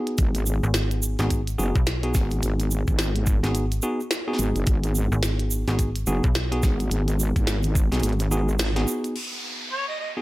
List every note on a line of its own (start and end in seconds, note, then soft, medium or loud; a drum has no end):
0.00 1.16 B3 medium
0.00 1.16 D#4 medium
0.00 1.16 F#4 medium
0.00 1.16 G#4 loud
0.07 closed hi-hat soft
0.18 0.61 G#1 loud
0.18 kick loud
0.18 closed hi-hat medium
0.18 shaker soft
0.35 closed hi-hat medium
0.35 shaker soft
0.46 shaker loud
0.63 1.17 G#1 medium
0.63 shaker soft
0.74 snare loud
0.74 closed hi-hat medium
0.74 shaker soft
0.91 closed hi-hat medium
1.02 shaker loud
1.19 1.57 G#1 loud
1.19 1.40 B3 medium
1.19 1.40 D#4 medium
1.19 1.40 F#4 medium
1.19 1.40 G#4 medium
1.19 snare soft
1.19 closed hi-hat soft
1.19 shaker soft
1.30 kick medium
1.30 closed hi-hat medium
1.30 shaker medium
1.47 closed hi-hat medium
1.47 shaker soft
1.58 1.73 F#1 loud
1.58 1.75 B3 medium
1.58 1.75 D#4 medium
1.58 1.75 F#4 medium
1.58 1.75 G#4 loud
1.58 shaker medium
1.75 2.13 B1 loud
1.75 kick loud
1.75 shaker soft
1.87 snare loud
1.87 closed hi-hat medium
1.87 shaker soft
2.03 3.40 B3 medium
2.03 3.40 D#4 medium
2.03 3.40 F#4 medium
2.03 3.40 G#4 medium
2.03 closed hi-hat medium
2.14 2.41 G#1 medium
2.14 kick loud
2.14 snare soft
2.14 shaker medium
2.31 closed hi-hat soft
2.31 shaker soft
2.42 2.85 G#1 loud
2.42 closed hi-hat medium
2.42 shaker soft
2.60 closed hi-hat soft
2.60 shaker soft
2.71 shaker medium
2.87 3.41 G#1 medium
2.87 kick medium
2.87 shaker soft
2.99 snare loud
2.99 closed hi-hat medium
2.99 shaker soft
3.16 closed hi-hat soft
3.26 kick loud
3.26 shaker medium
3.43 3.81 G#1 loud
3.43 3.64 B3 medium
3.43 3.64 D#4 medium
3.43 3.64 F#4 medium
3.43 3.64 G#4 medium
3.43 snare soft
3.43 closed hi-hat soft
3.43 shaker soft
3.55 closed hi-hat medium
3.55 shaker soft
3.72 closed hi-hat soft
3.72 shaker soft
3.82 3.99 B3 loud
3.82 3.99 D#4 medium
3.82 3.99 F#4 medium
3.82 3.99 G#4 loud
3.82 shaker medium
4.00 shaker soft
4.11 snare loud
4.11 closed hi-hat medium
4.11 shaker soft
4.28 5.64 B3 medium
4.28 5.64 D#4 medium
4.28 5.64 F#4 medium
4.28 5.64 G#4 loud
4.33 snare soft
4.39 4.53 G#1 medium
4.39 closed hi-hat soft
4.39 shaker medium
4.55 4.65 F#1 loud
4.55 closed hi-hat soft
4.55 shaker soft
4.67 5.09 G#1 loud
4.67 kick loud
4.67 closed hi-hat medium
4.67 shaker soft
4.83 closed hi-hat medium
4.83 shaker soft
4.95 shaker medium
5.12 5.65 G#1 medium
5.12 shaker soft
5.23 snare loud
5.23 closed hi-hat medium
5.23 shaker soft
5.39 closed hi-hat soft
5.51 shaker medium
5.68 6.05 G#1 loud
5.68 5.89 B3 medium
5.68 5.89 D#4 medium
5.68 5.89 F#4 medium
5.68 5.89 G#4 medium
5.68 snare soft
5.68 closed hi-hat soft
5.68 shaker soft
5.79 kick medium
5.79 closed hi-hat medium
5.79 shaker medium
5.96 closed hi-hat medium
5.96 shaker soft
6.07 6.21 F#1 loud
6.07 6.24 B3 loud
6.07 6.24 D#4 medium
6.07 6.24 F#4 medium
6.07 6.24 G#4 loud
6.07 shaker medium
6.24 6.62 B1 loud
6.24 kick loud
6.24 shaker soft
6.35 snare loud
6.35 closed hi-hat medium
6.35 shaker soft
6.52 7.88 B3 medium
6.52 7.88 D#4 medium
6.52 7.88 F#4 medium
6.52 7.88 G#4 loud
6.52 closed hi-hat medium
6.63 6.90 G#1 medium
6.63 kick loud
6.63 snare medium
6.63 shaker medium
6.80 closed hi-hat soft
6.80 shaker soft
6.91 7.33 G#1 loud
6.91 closed hi-hat medium
6.91 shaker soft
7.08 closed hi-hat medium
7.08 shaker soft
7.19 shaker medium
7.36 7.89 G#1 loud
7.36 kick medium
7.36 closed hi-hat soft
7.36 shaker soft
7.47 snare loud
7.47 closed hi-hat medium
7.47 shaker soft
7.63 closed hi-hat medium
7.63 shaker soft
7.75 kick loud
7.75 shaker medium
7.91 8.01 B1 loud
7.91 8.13 B3 medium
7.91 8.13 D#4 medium
7.91 8.13 F#4 medium
7.91 8.13 G#4 medium
7.91 snare soft
7.91 closed hi-hat soft
7.91 shaker soft
7.94 closed hi-hat soft
8.00 8.85 G#1 medium
8.00 closed hi-hat soft
8.00 shaker soft
8.03 closed hi-hat medium
8.09 closed hi-hat soft
8.13 closed hi-hat soft
8.19 closed hi-hat medium
8.19 shaker soft
8.31 8.48 B3 loud
8.31 8.48 D#4 medium
8.31 8.48 F#4 medium
8.31 8.48 G#4 loud
8.31 shaker medium
8.49 shaker soft
8.59 snare loud
8.59 closed hi-hat medium
8.59 shaker soft
8.76 9.14 B3 medium
8.76 9.14 D#4 medium
8.76 9.14 F#4 medium
8.76 9.14 G#4 loud
8.76 snare soft
8.76 closed hi-hat medium
8.87 shaker medium
9.04 closed hi-hat soft
9.04 shaker soft
9.16 crash medium
9.16 downlifter medium
9.72 9.85 C#5 medium
9.88 9.96 D#5 medium
10.00 10.10 D#5 medium
10.17 10.22 B3 medium
10.17 10.22 D#4 medium
10.17 10.22 F#4 medium
10.17 10.22 G#4 medium